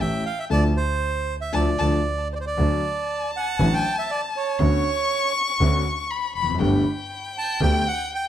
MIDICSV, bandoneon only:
0, 0, Header, 1, 2, 480
1, 0, Start_track
1, 0, Key_signature, 2, "major"
1, 0, Tempo, 512383
1, 481, Time_signature, 4, 2, 24, 8
1, 3364, Tempo, 502934
1, 7842, End_track
2, 0, Start_track
2, 0, Title_t, "Bandoneon"
2, 0, Program_c, 0, 23
2, 11, Note_on_c, 0, 76, 84
2, 229, Note_off_c, 0, 76, 0
2, 242, Note_on_c, 0, 77, 83
2, 365, Note_off_c, 0, 77, 0
2, 370, Note_on_c, 0, 76, 79
2, 422, Note_off_c, 0, 76, 0
2, 491, Note_on_c, 0, 74, 81
2, 595, Note_off_c, 0, 74, 0
2, 719, Note_on_c, 0, 72, 87
2, 1278, Note_off_c, 0, 72, 0
2, 1323, Note_on_c, 0, 76, 78
2, 1431, Note_off_c, 0, 76, 0
2, 1451, Note_on_c, 0, 74, 69
2, 2137, Note_off_c, 0, 74, 0
2, 2183, Note_on_c, 0, 72, 62
2, 2195, Note_off_c, 0, 72, 0
2, 2206, Note_on_c, 0, 74, 51
2, 2232, Note_off_c, 0, 74, 0
2, 2253, Note_on_c, 0, 72, 63
2, 2298, Note_off_c, 0, 72, 0
2, 2312, Note_on_c, 0, 74, 69
2, 3101, Note_off_c, 0, 74, 0
2, 3152, Note_on_c, 0, 78, 93
2, 3500, Note_on_c, 0, 79, 92
2, 3508, Note_off_c, 0, 78, 0
2, 3717, Note_off_c, 0, 79, 0
2, 3739, Note_on_c, 0, 76, 84
2, 3853, Note_on_c, 0, 74, 79
2, 3856, Note_off_c, 0, 76, 0
2, 3959, Note_off_c, 0, 74, 0
2, 4103, Note_on_c, 0, 73, 79
2, 5016, Note_off_c, 0, 73, 0
2, 6981, Note_on_c, 0, 81, 90
2, 7195, Note_off_c, 0, 81, 0
2, 7216, Note_on_c, 0, 79, 92
2, 7456, Note_off_c, 0, 79, 0
2, 7457, Note_on_c, 0, 78, 80
2, 7675, Note_off_c, 0, 78, 0
2, 7712, Note_on_c, 0, 79, 90
2, 7815, Note_off_c, 0, 79, 0
2, 7842, End_track
0, 0, End_of_file